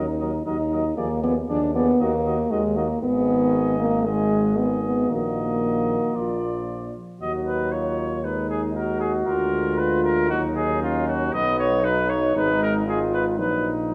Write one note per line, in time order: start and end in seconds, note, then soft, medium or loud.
0.00 0.40 D#2 medium
0.00 0.45 D#4 medium
0.20 0.32 F#3 soft
0.20 0.32 A#4 soft
0.20 0.32 D#5 medium
0.46 0.92 D#2 medium
0.46 0.57 F#3 medium
0.46 0.96 D#4 medium
0.46 0.58 A#4 medium
0.46 0.58 D#5 medium
0.70 0.84 F#3 medium
0.70 0.82 A#4 soft
0.70 0.84 D#5 medium
0.96 1.43 D#2 medium
0.96 1.09 F3 medium
0.96 1.23 A#3 medium
0.96 1.08 G#4 medium
0.96 1.09 D5 medium
1.23 1.34 F3 medium
1.23 1.35 B3 medium
1.23 1.34 G#4 medium
1.23 1.34 D5 medium
1.48 1.94 D#2 medium
1.48 1.60 F3 medium
1.48 1.74 D4 medium
1.48 1.60 G#4 medium
1.48 1.60 D5 medium
1.74 1.86 F3 medium
1.74 2.02 B3 loud
1.74 1.87 G#4 medium
1.74 1.86 D5 medium
2.00 2.45 D#2 medium
2.00 2.12 D#3 medium
2.00 2.52 A#3 medium
2.00 2.12 F#4 medium
2.00 2.12 D#5 medium
2.26 2.37 D#3 medium
2.26 2.38 F#4 medium
2.26 2.37 D#5 medium
2.50 2.96 D#2 medium
2.50 2.62 D#3 medium
2.50 2.78 G#3 medium
2.50 2.62 F#4 medium
2.50 2.63 D#5 medium
2.75 2.88 D#3 medium
2.75 3.02 A#3 medium
2.75 2.87 F#4 medium
2.75 2.88 D#5 medium
3.01 5.05 G#1 medium
3.01 4.01 D#3 medium
3.01 3.78 B3 loud
3.01 4.01 G#4 medium
3.01 4.01 D#5 medium
3.80 4.08 A#3 medium
4.04 4.55 D#3 medium
4.04 4.60 G#3 medium
4.04 4.56 G#4 medium
4.04 4.56 D#5 medium
4.56 5.08 D#3 medium
4.56 4.84 B3 medium
4.56 5.10 G#4 medium
4.56 5.09 D#5 medium
4.84 5.11 B3 medium
5.08 5.98 A#1 medium
5.08 6.16 D#3 medium
5.08 6.95 A#3 medium
5.08 6.18 F#4 medium
5.08 6.17 D#5 medium
6.15 6.93 A#1 medium
6.15 6.94 F3 medium
6.15 6.95 F4 medium
6.15 6.95 D5 medium
7.20 9.24 D#2 medium
7.20 8.26 F#3 medium
7.20 8.20 D#4 medium
7.20 7.74 F#4 medium
7.20 7.33 D#5 medium
7.47 7.73 B4 medium
7.72 8.24 F4 medium
7.72 8.26 C#5 medium
8.24 9.27 G#3 medium
8.24 8.78 D#4 medium
8.24 9.28 D#4 medium
8.24 8.49 B4 medium
8.50 8.62 G#4 medium
8.76 9.81 F#4 medium
8.76 8.99 A#4 medium
9.00 9.12 G#4 medium
9.27 10.32 D2 medium
9.27 10.29 G#3 medium
9.27 10.31 F4 medium
9.27 9.79 A#4 medium
9.78 10.31 F4 medium
9.78 10.03 B4 medium
10.03 10.29 A#4 medium
10.29 11.33 D#2 medium
10.29 11.31 F#3 medium
10.29 10.81 D#4 medium
10.29 11.33 D#4 medium
10.29 10.41 F#4 medium
10.56 10.81 G#4 medium
10.81 11.32 C#4 medium
10.81 11.07 F4 medium
11.08 11.34 F#4 medium
11.33 12.34 B1 medium
11.33 12.33 F#3 medium
11.33 11.86 B3 medium
11.33 12.34 D#4 medium
11.33 11.58 D#5 loud
11.59 11.86 C#5 loud
11.84 12.35 D#4 medium
11.84 12.11 B4 loud
12.09 12.35 C#5 loud
12.35 13.40 G#1 medium
12.35 12.86 G#3 medium
12.35 12.85 D#4 medium
12.35 12.89 D#4 medium
12.35 12.61 B4 medium
12.63 12.74 A#4 medium
12.85 13.40 G#3 medium
12.85 13.37 D#4 medium
12.85 13.39 F4 medium
12.85 13.00 G#4 medium
13.14 13.25 B4 medium
13.38 13.94 A#1 medium
13.38 13.72 F#3 medium
13.38 13.94 D#4 medium
13.38 13.72 D#4 medium
13.38 13.72 B4 medium
13.90 13.94 F#3 medium
13.90 13.94 D#4 medium